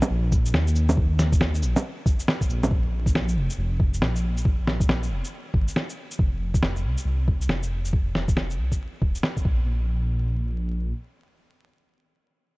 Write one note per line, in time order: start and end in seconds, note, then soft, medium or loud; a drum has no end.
0.02 low bongo medium
0.02 shaker medium
0.10 0.53 A#1 medium
0.32 kick loud
0.32 cabasa medium
0.46 shaker medium
0.54 0.96 D#2 medium
0.54 snare loud
0.67 shaker soft
0.76 cabasa medium
0.89 low bongo medium
0.89 shaker medium
0.97 1.64 D#2 loud
0.97 kick loud
1.19 snare medium
1.19 cabasa medium
1.32 kick loud
1.32 shaker medium
1.41 snare loud
1.54 shaker soft
1.62 1.75 A#1 loud
1.62 cabasa medium
1.76 low bongo medium
1.76 shaker medium
2.06 kick loud
2.06 cabasa medium
2.06 shaker soft
2.20 shaker medium
2.28 snare loud
2.41 kick medium
2.41 shaker soft
2.49 2.70 A#1 medium
2.49 cabasa medium
2.63 low bongo medium
2.63 shaker medium
2.71 3.37 A#1 medium
2.71 kick loud
3.06 kick loud
3.06 shaker medium
3.15 snare loud
3.28 shaker soft
3.36 3.49 F1 medium
3.50 shaker medium
3.58 4.01 F1 medium
3.80 kick loud
3.94 shaker medium
4.01 4.44 A#1 medium
4.01 snare loud
4.16 shaker soft
4.37 shaker medium
4.45 5.12 A#1 loud
4.45 kick loud
4.67 snare medium
4.80 kick loud
4.80 shaker medium
4.89 snare loud
5.03 shaker soft
5.10 5.23 F1 medium
5.25 shaker medium
5.54 5.66 G#1 medium
5.54 kick loud
5.68 shaker medium
5.76 snare loud
5.90 shaker soft
6.11 shaker medium
6.19 6.86 F1 loud
6.19 kick loud
6.54 kick loud
6.54 shaker medium
6.63 snare loud
6.76 shaker soft
6.84 6.97 C2 medium
6.98 shaker medium
7.05 7.48 C2 medium
7.28 kick loud
7.41 shaker medium
7.49 7.92 F1 medium
7.49 snare medium
7.63 shaker soft
7.85 shaker medium
7.93 8.59 F1 medium
7.93 kick loud
8.15 snare medium
8.28 kick medium
8.28 shaker soft
8.37 snare loud
8.50 shaker soft
8.58 8.70 C2 medium
8.72 kick medium
8.72 shaker soft
9.02 9.14 D#1 medium
9.02 kick medium
9.15 shaker medium
9.23 snare loud
9.37 kick medium
9.37 shaker soft
9.45 10.93 A#1 medium
9.45 kick loud